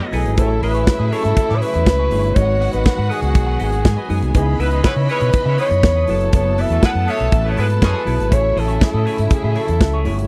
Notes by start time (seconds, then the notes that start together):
Already playing: A2 F#3 B3 D#4 E4 G#4 A4 B4 D#5
0.00 E4 A4 B4
0.12 B1 F#3 E4 G#4 A4 B4, open hi-hat
0.26 G#1, muted clean electric guitar stroke, closed hi-hat
0.37 A1 C#3 A3 E4 G#4 A4 B4 C#5 E5, kick, closed hi-hat
0.44 C#5
0.50 muted clean electric guitar stroke
0.62 A1 E4 G#4 B4 D#5, open hi-hat
0.74 E4 G#4 C#5, closed hi-hat
0.87 muted fingered electric bass stroke, muted clean electric guitar stroke, kick, snare, closed hi-hat
0.99 A2 E4 G#4 D#5
1.12 E4 G#4 A4 C#5, open hi-hat
1.25 G#2, muted clean electric guitar stroke, closed hi-hat
1.37 muted fingered electric bass stroke, muted clean electric guitar stroke, kick, closed hi-hat
1.49 A2 E4 G#4 D#5, snare
1.56 C#5
1.61 E4 G#4 B4 C#5, open hi-hat
1.74 E2, muted clean electric guitar stroke, closed hi-hat
1.86 C#2, muted clean electric guitar stroke, kick, snare, closed hi-hat
1.99 E4 G#4 C#5
2.11 G1 A3 E4 G#4 C#5, open hi-hat
2.24 muted clean electric guitar stroke, closed hi-hat
2.35 G#1 D#3 G#3 B3 D#4 F#4 A4 B4 C#5 D#5 F#5, kick, closed hi-hat
2.44 B4
2.48 muted clean electric guitar stroke
2.61 F#4 B4 F#5, open hi-hat
2.73 G#1 F#4 B4 D#5, closed hi-hat
2.86 muted clean electric guitar stroke, muted fingered electric bass stroke, kick, snare, closed hi-hat
2.98 G#2 F#4 B4 F#5
3.09 F#4 G#4 B4 D#5, open hi-hat
3.22 C#2, muted clean electric guitar stroke, closed hi-hat
3.34 B1, muted clean electric guitar stroke, kick, closed hi-hat
3.47 F#4 B4 F#5
3.59 G#1 F#4 G#4 B4 D#5, open hi-hat
3.72 muted clean electric guitar stroke, closed hi-hat
3.85 G#2 G#4 G#5, muted clean electric guitar stroke, kick, snare, closed hi-hat
3.97 F#4 B4 D#5
4.09 F#2 G#3 D#4 F#4 G#4 B4 D#5, open hi-hat
4.22 C2, muted clean electric guitar stroke, closed hi-hat
4.34 C#2 C#3 E3 B3 D#4 E4 G#4 B4 D#5 B5, kick, closed hi-hat
4.47 muted clean electric guitar stroke
4.59 C#2 G#3 B3 E4 B4 E5, open hi-hat
4.71 E3 G#3 D#4 E4 G#4 B4 D#5, closed hi-hat
4.84 G#3 B3 E4 B4 C#5, muted fingered electric bass stroke, muted clean electric guitar stroke, kick, snare, closed hi-hat
4.96 C#3 E4 B4 E5
5.09 G#3 C#4 E4 B4 C#5 D#5, open hi-hat
5.21 B2, muted clean electric guitar stroke, closed hi-hat
5.33 muted clean electric guitar stroke, muted fingered electric bass stroke, kick, closed hi-hat
5.45 C#3 G#3 C#4 E4 B4 C#5 E5
5.58 G#3 B3 E4 B4 C#5 D#5, open hi-hat
5.71 F#2, muted clean electric guitar stroke, closed hi-hat
5.83 E2, kick, snare, closed hi-hat
5.96 E4 B4 D#5
6.07 F#1 A2 F#3 B3 E4 F#4 A4 B4 A5, open hi-hat
6.21 muted clean electric guitar stroke, closed hi-hat
6.33 F#1 B3 E4 A4 C#5, kick, closed hi-hat
6.45 muted clean electric guitar stroke
6.58 B3 E4 B4 E5, open hi-hat
6.70 E2 E3 A3 B3 C#4 E4 A4, closed hi-hat
6.82 G#3 B3 E4 B4 F#5, muted clean electric guitar stroke, muted fingered electric bass stroke, kick, snare, closed hi-hat
6.95 F#2 B3 E4 B4
7.07 A3 B3 C#4 E4 G#4 A4 C#5 E5, open hi-hat
7.20 B1, muted clean electric guitar stroke, closed hi-hat
7.32 A1, muted clean electric guitar stroke, kick, closed hi-hat
7.45 A3 B3 C#4 E4 G#4 B4 C#5
7.51 C#5
7.57 G#2 G#3 B3 E4 A4 B4, open hi-hat
7.70 muted clean electric guitar stroke, closed hi-hat
7.81 F#2 E3 G#3 C#4 G#4, muted clean electric guitar stroke, kick, snare, closed hi-hat
7.93 B3 E4 A4
8.05 B1 F#3 B3 E4 G#4 A4 B4, open hi-hat
8.19 G#1, muted clean electric guitar stroke, closed hi-hat
8.30 A1 C#3 A3 E4 G#4 A4 B4 C#5 E5, kick, closed hi-hat
8.38 C#5
8.43 muted clean electric guitar stroke
8.56 A1 E4 G#4 A4 D#5, open hi-hat
8.68 E4 G#4 C#5, closed hi-hat
8.81 A4, muted fingered electric bass stroke, muted clean electric guitar stroke, kick, snare, closed hi-hat
8.94 A2 E4 G#4 D#5
9.06 E4 G#4 C#5, open hi-hat
9.18 G#2, muted clean electric guitar stroke, closed hi-hat
9.26 A4
9.30 G#4, muted fingered electric bass stroke, muted clean electric guitar stroke, kick, closed hi-hat
9.43 A2 E4 G#4 D#5
9.56 E4 G#4 A4 C#5, open hi-hat
9.68 E2, muted clean electric guitar stroke, closed hi-hat
9.80 C#2, muted clean electric guitar stroke, kick, snare, closed hi-hat
9.93 E4 G#4 C#5
10.05 G1 A3 E4 G#4 C#5, open hi-hat
10.18 muted clean electric guitar stroke, closed hi-hat